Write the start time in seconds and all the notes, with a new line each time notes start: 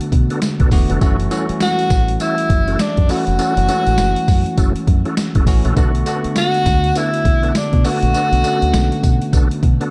Already playing: D3 A3 B3 F#4 A4
0.01 closed hi-hat
0.12 B2, kick, closed hi-hat
0.30 B3 D4 F#4 A4, closed hi-hat
0.42 snare, closed hi-hat, tambourine
0.60 B1 B3 D4 F#4 A4, kick, closed hi-hat
0.71 E1 D3 A3 B3 F#4, kick, open hi-hat, tambourine
0.89 F1 B3 D4 F#4 A4, closed hi-hat
1.01 F#1 E3 A3 C#4 E4 F#4 A4, kick, closed hi-hat, tambourine
1.20 closed hi-hat
1.31 E3 G3 C#4 E4 F#4 A4, closed hi-hat, tambourine
1.38 A3
1.49 muted fingered electric bass stroke, closed hi-hat
1.60 F#4, snare, closed hi-hat, tambourine
1.79 closed hi-hat
1.90 A1, kick, snare, closed hi-hat, tambourine
2.08 closed hi-hat
2.20 C#4 E4 F#4 A4, closed hi-hat, tambourine
2.38 closed hi-hat
2.50 F#1, kick, closed hi-hat
2.68 C#4 E4 F#4 A4, closed hi-hat
2.79 D4, snare, closed hi-hat, tambourine
2.97 F#2, kick, closed hi-hat
3.09 E3 A3 C#4 E4 F#4 A4, open hi-hat, tambourine
3.27 F1, closed hi-hat
3.39 E3 A3 C#4 E4 F#4 A4, closed hi-hat, tambourine
3.57 F#1, closed hi-hat
3.68 E3 G#3 C#4 E4 F#4 A4, closed hi-hat, tambourine
3.75 A3
3.87 A1, closed hi-hat
3.98 F#1, snare, closed hi-hat, tambourine
4.16 closed hi-hat
4.28 F#2, kick, open hi-hat, tambourine
4.46 closed hi-hat
4.57 F#1 C#4 E4 F#4 A4, kick, closed hi-hat, tambourine
4.76 closed hi-hat
4.87 F#2, kick, closed hi-hat
5.05 C#4 E4 F#4 A4, closed hi-hat
5.17 snare, closed hi-hat, tambourine
5.35 F#1 C#4 E4 F#4 A4, kick, closed hi-hat
5.47 A1 E3 A3 C#4 F#4, kick, open hi-hat, tambourine
5.65 A#1 C#4 E4 F#4 A4, closed hi-hat
5.76 B1 D3 A3 B3 D4 F#4 A4, kick, closed hi-hat, tambourine
5.95 closed hi-hat
6.06 D3 A3 B3 D4 F#4 A4, closed hi-hat, tambourine
6.24 muted fingered electric bass stroke, closed hi-hat
6.36 F#4, snare, closed hi-hat, tambourine
6.54 closed hi-hat
6.66 D2, kick, snare, closed hi-hat, tambourine
6.84 closed hi-hat
6.95 B3 D4 E4 F#4 A4, closed hi-hat, tambourine
7.14 closed hi-hat
7.25 B1, kick, closed hi-hat
7.43 B3 D4 F#4 A4, closed hi-hat
7.55 D4, snare, closed hi-hat, tambourine
7.73 B2, kick, closed hi-hat
7.84 D3 A3 B3 D4 F#4 A4, open hi-hat, tambourine
8.03 A#1, closed hi-hat
8.14 D3 A3 B3 D4 F#4 A4, closed hi-hat, tambourine
8.32 B1, closed hi-hat
8.43 D3 A3 B3 C#4 D4 F#4 A4, closed hi-hat, tambourine
8.62 D2, closed hi-hat
8.74 B1, snare, closed hi-hat, tambourine
8.92 closed hi-hat
9.03 B2, kick, closed hi-hat, tambourine
9.22 closed hi-hat
9.33 B1 B3 D4 F#4 A4, kick, closed hi-hat, tambourine
9.51 closed hi-hat
9.63 B2, kick, closed hi-hat
9.81 B3 D4 F#4 A4, closed hi-hat